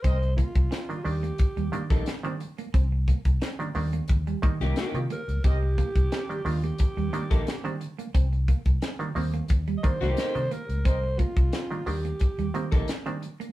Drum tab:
HH |xxxxxxoxxxxxxxxx|x-xxxxoxxxxxxxxx|x-xxxxoxxxxxxxxx|xxxxxxoxxxxxxxxx|
SD |----o------oo---|----o------oo---|----o------oo---|----o------oo---|
BD |o-oo----o--o----|o-oo----o-o-----|o-oo----o--o----|o-oo----o-o-----|

HH |x-xxxxoxxxxxxxxx|
SD |----o------oo---|
BD |o-oo----o--o----|